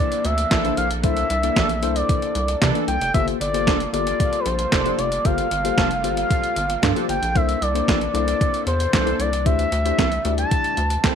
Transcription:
Already playing: analog synth pad C3 E3 A#3 D4 A4, tine electric piano A#3 D4 E4 A4 C5, analog synth lead D5
0.12 closed hi-hat
0.25 analog synth bass D2, analog synth lead E5, closed hi-hat
0.38 closed hi-hat
0.51 analog synth bass A#1, analog polysynth E3 D4 A4, kick, snare, clap, closed hi-hat
0.64 tine electric piano A#3 D4 E4 A4 C5, closed hi-hat
0.77 analog synth bass A#1, analog synth lead F5, closed hi-hat
0.91 closed hi-hat
1.03 analog synth bass C2, tine electric piano A#3 D4 E4 A4 C5, analog synth lead E5, kick, closed hi-hat
1.17 closed hi-hat
1.30 analog synth bass C2, closed hi-hat
1.43 tine electric piano A#3 D4 E4 A4 D5, closed hi-hat
1.56 analog synth bass A#1, analog polysynth E3 D4 A4, kick, snare, clap, closed hi-hat
1.69 closed hi-hat
1.82 analog synth bass C2, tine electric piano A#3 D4 E4 A4 C5, closed hi-hat
1.96 analog synth lead D5, closed hi-hat
2.09 kick, closed hi-hat
2.22 closed hi-hat
2.35 analog synth bass C2, closed hi-hat
2.48 closed hi-hat
2.62 analog synth bass C3, analog polysynth E3 D4 A4, kick, snare, clap, closed hi-hat
2.74 tine electric piano A#3 D4 E4 A4 D5, closed hi-hat
2.88 analog synth bass C2, analog synth lead G5, closed hi-hat
3.01 analog synth bass F1, closed hi-hat
3.14 analog synth bass G1, analog synth pad C3 G3 A#3 F4, tine electric piano A#3 F4 G4 A4 C5, analog synth lead E5, kick, closed hi-hat
3.28 closed hi-hat
3.41 analog synth bass G1, analog synth lead D5, closed hi-hat
3.53 tine electric piano A#3 F4 G4 A4 C5, closed hi-hat
3.67 analog synth bass F1, analog polysynth F3 D4 A4, kick, snare, clap, closed hi-hat
3.80 closed hi-hat
3.93 analog synth bass G1, tine electric piano A#3 F4 G4 A4 D5, analog synth lead D5, closed hi-hat
4.07 closed hi-hat
4.20 kick, closed hi-hat
4.33 closed hi-hat
4.40 analog synth lead B4
4.46 analog synth bass A#1, analog synth lead C5, closed hi-hat
4.59 closed hi-hat
4.72 analog synth bass F1, analog polysynth F3 D4 A4, kick, snare, clap, closed hi-hat
4.85 tine electric piano A#3 F4 G4 A4 D5, closed hi-hat
4.99 analog synth bass F1, analog synth lead D5, closed hi-hat
5.12 closed hi-hat
5.24 analog synth bass G1, tine electric piano A#3 F4 G4 A4 C5, analog synth pad F4, analog synth lead F5, kick, closed hi-hat
5.38 closed hi-hat
5.51 analog synth bass G1, closed hi-hat
5.64 tine electric piano A#3 F4 G4 A4 C5, closed hi-hat
5.77 analog synth bass F1, analog polysynth F3 D4 A4, kick, snare, clap, closed hi-hat
5.91 closed hi-hat
6.04 analog synth bass G1, tine electric piano A#3 F4 G4 A4 C5, closed hi-hat
6.17 analog synth lead F5, closed hi-hat
6.31 kick, closed hi-hat
6.44 closed hi-hat
6.56 analog synth bass G1, closed hi-hat
6.70 closed hi-hat
6.82 analog synth bass G2, analog polysynth F3 D4 A4, kick, snare, clap, closed hi-hat
6.95 tine electric piano A#3 F4 G4 A4 C5, closed hi-hat
7.09 analog synth bass G1, analog synth lead G5, closed hi-hat
7.22 analog synth bass A#1, closed hi-hat
7.35 analog synth bass C2, analog synth pad C3 E3 D4 A4, tine electric piano A#3 D4 E4 A4 C5, analog synth lead E5, kick, closed hi-hat
7.49 closed hi-hat
7.62 analog synth bass C2, analog synth lead D5, closed hi-hat
7.74 tine electric piano A#3 D4 E4 A4 C5, closed hi-hat
7.88 analog synth bass A#1, analog polysynth E3 D4 A4, kick, snare, clap, closed hi-hat
8.01 closed hi-hat
8.14 analog synth bass C2, tine electric piano A#3 D4 E4 A4 C5, analog synth lead D5, closed hi-hat
8.28 closed hi-hat
8.41 kick, closed hi-hat
8.54 closed hi-hat
8.67 analog synth bass E2, analog synth lead C5, closed hi-hat
8.80 closed hi-hat
8.93 analog synth bass C2, analog polysynth E3 D4 A4, analog synth lead C5, kick, snare, clap, closed hi-hat
9.06 tine electric piano A#3 D4 E4 A4 C5, closed hi-hat
9.19 analog synth bass C2, analog synth lead D5, closed hi-hat
9.33 closed hi-hat
9.45 analog synth bass D2, analog synth pad G3 A3, tine electric piano A3 D4 E4 G4 C5, analog synth lead E5, kick, closed hi-hat
9.59 closed hi-hat
9.72 analog synth bass D2, closed hi-hat
9.85 tine electric piano A3 D4 E4 G4 C5, closed hi-hat
9.99 analog synth bass C2, analog polysynth E3 C4 A4, kick, snare, clap, closed hi-hat
10.12 closed hi-hat
10.25 analog synth bass D2, tine electric piano A3 D4 E4 G4 D5, closed hi-hat
10.38 analog synth lead A5, closed hi-hat
10.51 kick, closed hi-hat
10.64 closed hi-hat
10.77 analog synth bass D2, closed hi-hat
10.90 closed hi-hat
11.04 analog polysynth E3 C4 A4, kick, snare, clap, closed hi-hat

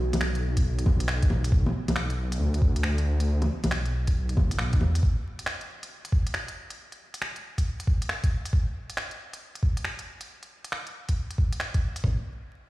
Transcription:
Already playing: detuned saw bass B1, ambient pad D3 B3 F#4 A4
0.13 detuned saw bass B1, closed hi-hat, low bongo
0.21 finger snap
0.35 closed hi-hat
0.57 kick, closed hi-hat
0.79 closed hi-hat
0.86 kick, low bongo
1.00 closed hi-hat
1.08 finger snap
1.23 kick, closed hi-hat
1.30 low bongo
1.44 closed hi-hat
1.52 kick
1.66 low bongo
1.88 detuned saw bass B1, closed hi-hat, low bongo
1.96 finger snap
2.10 closed hi-hat
2.32 closed hi-hat
2.40 detuned saw bass D2
2.54 closed hi-hat
2.62 kick
2.76 closed hi-hat
2.83 finger snap
2.98 closed hi-hat
3.20 closed hi-hat
3.42 closed hi-hat, low bongo
3.64 detuned saw bass B1, closed hi-hat, low bongo
3.71 finger snap
3.85 closed hi-hat
4.07 kick, closed hi-hat
4.29 closed hi-hat
4.37 detuned saw bass F#1, kick, low bongo
4.51 closed hi-hat
4.59 detuned saw bass B1, finger snap
4.73 kick, closed hi-hat
4.81 detuned saw bass E2, low bongo
4.95 closed hi-hat
5.03 kick
5.39 closed hi-hat
5.46 finger snap
5.61 closed hi-hat
5.83 closed hi-hat
6.05 closed hi-hat
6.12 kick
6.27 closed hi-hat
6.34 finger snap
6.48 closed hi-hat
6.70 closed hi-hat
6.92 closed hi-hat
7.14 closed hi-hat
7.22 finger snap
7.36 closed hi-hat
7.58 kick, closed hi-hat
7.80 closed hi-hat
7.87 kick
8.02 closed hi-hat
8.09 finger snap
8.24 kick, closed hi-hat
8.46 closed hi-hat
8.53 kick
8.90 closed hi-hat
8.97 finger snap
9.11 closed hi-hat
9.33 closed hi-hat
9.55 closed hi-hat
9.63 kick
9.77 closed hi-hat
9.85 finger snap
9.99 closed hi-hat
10.21 closed hi-hat
10.43 closed hi-hat
10.64 closed hi-hat
10.72 finger snap
10.87 closed hi-hat
11.09 kick, closed hi-hat
11.31 closed hi-hat
11.38 kick
11.53 closed hi-hat
11.60 finger snap
11.74 kick, closed hi-hat
11.96 closed hi-hat
12.04 kick, floor tom

